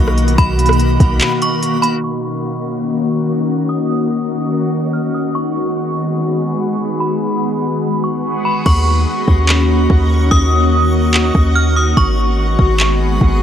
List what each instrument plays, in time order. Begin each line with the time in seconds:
Already playing: 808-style bass B1, ambient pad B2 D#3 A#3 F#4, synth texture A#3 D#5 B5, synth bell C#6
0.08 cross-stick
0.18 closed hi-hat
0.28 closed hi-hat
0.38 808-style bass B1, synth bell B5, kick, closed hi-hat
0.59 closed hi-hat
0.66 cross-stick, closed hi-hat
0.73 closed hi-hat
0.79 closed hi-hat
1.00 808-style bass B1, kick, closed hi-hat
1.21 clap, closed hi-hat
1.42 synth bell C#6, closed hi-hat
1.63 closed hi-hat
1.82 synth bell B5, closed hi-hat
2.04 ambient pad D#3 A#3 C#4 F#4, synth texture F#4 D#5 C#6, synth bell C#6
3.69 synth bell D#6
4.93 synth bell F6
5.14 synth bell D#6
5.35 ambient pad G#3 B3, synth texture G#4 F#5 B5, synth bell C#6
7.00 synth bell B5
8.04 synth bell C#6
8.45 synth bell B5
8.66 808-style bass D#2, ambient pad D#3 A#3 C#4 F#4, synth texture F#4 D#5 C#6, synth bell C#6, kick, crash
9.28 808-style bass D#2, kick
9.49 clap
9.90 808-style bass D#2, kick
10.31 808-style bass D#2, synth bell D#6, kick
11.14 clap
11.35 808-style bass D#2, kick
11.55 synth bell F6
11.76 synth bell D#6
11.97 808-style bass G#1, ambient pad G#3 B3, synth texture G#4 F#5 B5, synth bell C#6, kick
12.59 808-style bass G#1, kick
12.80 clap
13.21 808-style bass G#1, kick